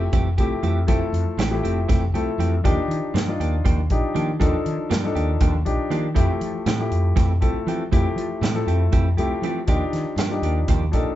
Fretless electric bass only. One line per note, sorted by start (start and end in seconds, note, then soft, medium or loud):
0.13 0.35 F1 medium
0.38 0.49 C2 medium
0.63 0.85 F2 medium
0.89 1.00 F1 medium
1.13 1.24 F2 medium
1.37 1.60 A1 medium
1.63 1.86 F1 medium
1.90 2.11 F1 medium
2.12 2.24 C2 medium
2.38 2.61 F2 medium
2.65 2.75 D#2 medium
2.88 3.00 D#3 medium
3.14 3.36 G2 loud
3.40 3.62 D#2 medium
3.65 3.87 D#2 loud
3.91 4.01 A#1 medium
4.16 4.37 D#3 medium
4.40 4.51 D#2 medium
4.66 4.77 D#3 medium
4.91 5.13 G2 loud
5.15 5.37 D#2 medium
5.41 5.63 D#2 medium
5.66 5.77 A#1 medium
5.90 6.13 D#3 medium
6.16 6.27 F2 loud
6.41 6.52 F3 medium
6.66 6.88 A2 medium
6.91 7.13 F2 medium
7.17 7.39 F2 loud
7.42 7.53 C2 medium
7.67 7.89 F3 medium
7.92 8.03 F2 medium
8.16 8.27 F3 medium
8.41 8.64 A2 loud
8.67 8.89 F2 medium
8.93 9.15 F2 loud
9.17 9.28 C2 medium
9.42 9.64 F3 medium
9.68 9.79 D#2 loud
9.93 10.04 D#3 medium
10.16 10.39 G2 loud
10.42 10.64 D#2 medium
10.68 10.90 D#2 loud
10.93 11.04 A#1 medium